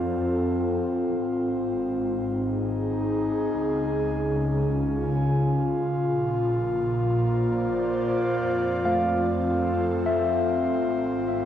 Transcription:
Already playing: double bass section F2, analog synth pad C4 F4 A4
1.13 double bass section G#1
1.92 analog synth pad D#4
2.23 analog synth pad G#4
3.55 double bass section C#2, analog synth pad C#3
3.87 analog synth pad C#4
4.49 analog synth pad F4
4.64 analog synth pad G#5
6.00 double bass section A#1, analog synth pad A#2
6.56 analog synth pad A#3
7.12 analog synth pad C5 D5
8.43 double bass section F2, analog synth pad C4
8.85 tine electric piano A3 F5
9.22 analog synth pad A4
10.06 tine electric piano E5
10.87 double bass section G#1

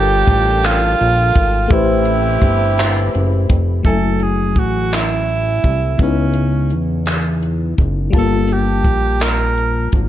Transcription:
Already playing: analog synth bass G1, horn section F3 D4 A4, fm electric piano G3 F4 A4 A#4, tenor saxophone G4, string section F5 G5 A5
0.27 analog synth bass A1, kick, closed hi-hat
0.63 tenor saxophone F4, clap, closed hi-hat
1.01 analog synth bass A#1, closed hi-hat
1.35 analog synth bass G#1, kick, closed hi-hat
1.68 analog synth bass A1, horn section E3 C4 G4, fm electric piano A3 G4, string section C4 B5, kick, closed hi-hat
1.72 tenor saxophone E4, string section G4, fm electric piano B4 C5
2.05 closed hi-hat
2.42 analog synth bass G1, kick, closed hi-hat
2.78 clap, closed hi-hat
3.15 analog synth bass F#1, closed hi-hat
3.49 analog synth bass F1, kick, closed hi-hat
3.83 analog synth bass F#1, fm electric piano F#3 E4 G#5, tenor saxophone A4, kick, closed hi-hat
3.89 fm electric piano A3
4.20 tenor saxophone G#4, closed hi-hat
4.56 analog synth bass A1, tenor saxophone F#4, kick, closed hi-hat
4.92 tenor saxophone E4, clap, closed hi-hat
5.29 closed hi-hat
5.64 analog synth bass C2, kick, closed hi-hat
5.98 analog synth bass C#2, fm electric piano C#3 B3, kick, closed hi-hat
6.02 tenor saxophone C#4, fm electric piano D#4 E4
6.33 closed hi-hat
6.70 analog synth bass E2, closed hi-hat
7.06 clap, closed hi-hat
7.42 closed hi-hat
7.78 analog synth bass F#1, kick, closed hi-hat
8.10 fm electric piano G3 F4, kick, closed hi-hat
8.14 analog synth bass G1, fm electric piano A#3 A5, tenor saxophone A4
8.48 closed hi-hat
8.52 tenor saxophone G4
8.84 analog synth bass A#1, kick, closed hi-hat
9.20 tenor saxophone A#4, clap, closed hi-hat
9.58 closed hi-hat
9.92 analog synth bass G#1, kick, closed hi-hat

